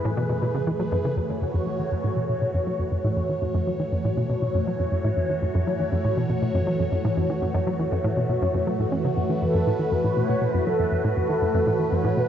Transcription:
Already playing: E3 A3 G#4 B4
0.05 A2
0.17 B2
0.29 B2
0.42 B2
0.54 C#3
0.67 E3
0.79 F#3
0.92 F#2
1.05 C#3
1.17 F#2 E3 A3 F#4 C#5
1.29 E3
1.42 F#2
1.54 F#2
1.67 F#3
1.79 E3
1.92 F#2
2.04 A2
2.17 B2
2.29 B2
2.42 B2
2.54 F#2
2.67 F#3
2.80 F#2
2.92 F#2
3.04 A2
3.17 F#2
3.29 E3
3.42 F#2
3.55 F#2
3.67 F#3
3.80 E3
3.92 F#2
4.05 A2
4.17 B2
4.30 B2
4.42 B2
4.55 F#2
4.67 F#3
4.80 F#2
4.92 F#2
5.05 A2
5.17 F#2
5.30 E3
5.42 F#2
5.55 F#2
5.67 F#3
5.80 E3
5.92 F#2
6.05 A2
6.17 B2
6.30 B2
6.42 B2
6.55 F#2
6.67 F#3
6.80 F#2
6.92 F#2
7.05 A2
7.17 F#2
7.30 E3
7.42 F#2
7.55 F#2
7.67 F#3
7.80 E3
7.92 F#2
8.04 A2
8.17 B2
8.29 B2
8.42 F#2
8.55 F#2
8.67 F#3
8.79 A2
8.92 C#4
9.04 C#3
9.17 F#2 B4
9.29 E3
9.42 F#2 A4
9.54 F#2
9.67 A2
9.79 E3
9.92 F#2 B4
10.04 A2
10.17 B2 C#5
10.29 B2
10.42 B2
10.54 F#2
10.67 F#3 A4
10.79 F#2
10.92 F#2
11.04 A2
11.17 F#2 A4
11.30 E3
11.42 F#2
11.55 F#2
11.67 A2
11.80 E3
11.92 F#2 C#5
12.05 A2
12.17 B2 B4

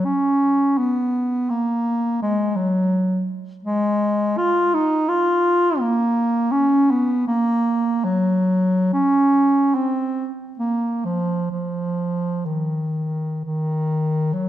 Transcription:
0.05 C#4
0.78 B3
1.50 A#3
2.22 G#3
2.56 F#3
3.63 G#3
4.37 F4
4.74 D#4
5.09 F4
5.79 A#3
6.51 C#4
6.91 B3
7.28 A#3
8.05 F#3
8.93 C#4
9.75 C4
10.59 A#3
11.05 F3
11.51 F3
12.46 D#3
13.45 D#3
14.33 F#3

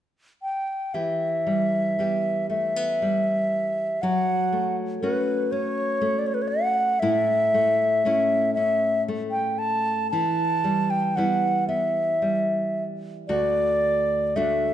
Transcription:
0.42 G5
0.94 E3 G4 E5
1.47 G3
1.99 G3 B3 G4
2.50 A3 E5
2.76 B3
3.02 G3
4.02 F#3 F#4 F#5
4.52 A3
5.01 A3 C#4 F#4 B4
5.52 C#4 C#5
6.01 A3
6.19 D5
6.26 C#5
6.34 B4
6.42 C#5
6.48 F#5
7.00 A2 E4 E5
7.54 A3
8.05 A3 C#4 E4
8.54 C#4 E5
9.08 A3
9.31 G5
9.58 A5
10.11 E3 E4 A5
10.64 G3
10.90 G5
11.16 G3 B3 E4 F#5
11.68 B3 E5
12.22 G3
13.28 D2 F#4 D5
14.36 A3 D4 F#4 E5

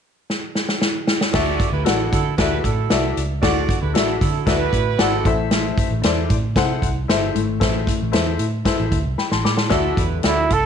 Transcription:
0.30 snare
0.55 snare
0.69 snare
0.82 snare
1.07 snare
1.21 snare
1.33 D2 D3 F#4 A4 D5 E5, kick, snare, crash
1.60 kick, closed hi-hat
1.72 D2 E4 G4 B4
1.85 A1 E4 F#4 A4 D5 F#5, snare, closed hi-hat
2.11 D3 E4 F#4 A4, kick, closed hi-hat
2.37 D2 E4 F#4 G4 A4 B4 D5 E5, kick, snare, closed hi-hat
2.64 A2 E4 F#4 A4, kick, closed hi-hat
2.90 C2 F#4 A4 D5 E5, snare, closed hi-hat
3.17 C#2, closed hi-hat
3.42 D2 D3 F#4 A4 D5 F#5, kick, snare, closed hi-hat
3.69 kick, closed hi-hat
3.81 D2 E4 G4 B4
3.94 A1 E4 F#4 A4 D5 E5, snare, closed hi-hat
4.21 D3 E4 F#4 A4, kick, closed hi-hat
4.46 D2 E4 F#4 A4 B4 D5 E5, kick, snare, closed hi-hat
4.73 A2, kick, closed hi-hat
4.99 G#1 C4 E4 F#4 A4 D5 F#5, snare, closed hi-hat
5.25 A1 A2 E4 A4 C5 E5, kick, closed hi-hat
5.51 snare, closed hi-hat
5.78 kick, closed hi-hat
5.91 A1
6.03 E2 E4 A4 C5 D5, snare, closed hi-hat
6.30 A2, kick, closed hi-hat
6.56 C3 E4 A4 C5 F#5, kick, snare, closed hi-hat
6.82 C2, kick, closed hi-hat
7.08 G1 E4 A4 C5 E5, snare, closed hi-hat
7.35 G#1 A2, closed hi-hat
7.60 A1 E4 A4 C5 E5, kick, snare, closed hi-hat
7.87 kick, closed hi-hat
8.02 A1
8.12 E2 E4 A4 C5 E5, snare, closed hi-hat
8.39 A2, closed hi-hat
8.65 E4 A4 C5 E5, kick, snare, closed hi-hat
8.80 A1
8.92 D2, kick, closed hi-hat
9.05 C2
9.18 G5 B5, snare
9.32 A1 A5 C6, snare
9.45 A2 B5 D6, snare
9.57 A5 C6, snare
9.70 D2 D3 E4 F#4 A4 D5 E5, kick, snare, closed hi-hat
9.97 E2 E4 G4 B4, kick, closed hi-hat
10.23 D2 F#4 A4 D5 E5, snare, closed hi-hat
10.27 E4
10.49 C2 E4 F#4 A4, kick, closed hi-hat
10.53 A4

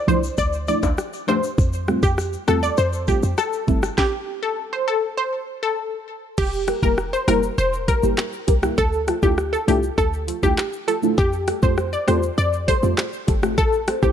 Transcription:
0.07 C2 F3 A3 D4 E4 C5, shaker
0.23 shaker
0.38 D2 D5, kick, shaker
0.53 shaker
0.67 F3 A3 D4 E4 D5, shaker
0.83 D2, kick, high timbale, shaker
0.98 cross-stick, shaker
1.13 shaker
1.27 F3 A3 D4 G4 C5, high timbale, shaker
1.43 shaker
1.58 F2, kick, shaker
1.73 shaker
1.87 G3 A3 C4 F4, cross-stick, shaker
2.03 F2 G4, kick, shaker
2.18 cross-stick, shaker
2.33 shaker
2.47 E2 G3 A3 C4 F4 A4, cross-stick, shaker
2.63 D5, shaker
2.77 F2 C5, shaker
2.93 shaker
3.07 G3 A3 C4 F4 G4, kick, shaker
3.23 F2, shaker
3.38 A4, cross-stick, shaker
3.53 shaker
3.67 G1 G3 A3 C4 E4, kick, shaker
3.83 cross-stick, shaker
3.98 G4, kick, snare
4.43 A4
4.73 C5
4.88 A4
5.17 C5
5.63 A4
6.38 E1 G4, kick, crash, shaker
6.53 shaker
6.67 G4 A#4, cross-stick, closed hi-hat, shaker
6.82 E1 G3 A#3 E4 G4 A#4, kick, shaker
6.98 cross-stick, shaker
7.13 C5, shaker
7.27 F1 G3 A#3 E4 G4 A#4, cross-stick, closed hi-hat, shaker
7.43 shaker
7.58 E1 C5, shaker
7.73 shaker
7.87 G4 A#4, kick, closed hi-hat, shaker
8.02 G1 G3 A#3 E4 G4 A#4, shaker
8.18 cross-stick, clap, shaker
8.33 shaker
8.47 C2 G4 A#4, kick, closed hi-hat, shaker
8.62 G3 A#3 E4 G4 A#4, cross-stick, shaker
8.78 D2 A4, kick, shaker
8.93 shaker
9.07 F4 A4, cross-stick, closed hi-hat, shaker
9.22 D2 A3 D4 E4 F4 G4 A4, kick, shaker
9.38 cross-stick, shaker
9.53 A4, shaker
9.67 C2 A3 D4 E4 F4 G4 A4, closed hi-hat, shaker
9.83 shaker
9.98 D2 A4, kick, shaker
10.13 shaker
10.27 F4 A4, closed hi-hat, shaker
10.42 D2 A3 D4 E4 F4 G4, kick, shaker
10.58 cross-stick, clap, shaker
10.73 shaker
10.87 F4 A4, closed hi-hat, shaker
11.02 A3 D4 E4 F4 A4, shaker
11.18 F2 G4, kick, shaker
11.33 shaker
11.47 G4 A4, cross-stick, closed hi-hat, shaker
11.62 F2 A3 C4 F4 G4 A4 C5, kick, shaker
11.78 cross-stick, shaker
11.93 D5, shaker
12.07 E2 A3 C4 F4 G4 A4 C5, cross-stick, closed hi-hat, shaker
12.23 shaker
12.38 F2 D5, shaker
12.53 shaker
12.67 G4 A4 C5, kick, closed hi-hat, shaker
12.82 F2 A3 C4 F4 G4 A4, shaker
12.98 cross-stick, clap, shaker
13.13 shaker
13.27 G1 G4 A4, kick, closed hi-hat, shaker
13.42 A3 C4 F4 G4 A4, cross-stick, shaker
13.58 A1 A4, kick, shaker
13.73 shaker
13.87 A4 C5, cross-stick, closed hi-hat, shaker
14.02 A1 A3 C4 E4 G4 A4 C5, kick, shaker

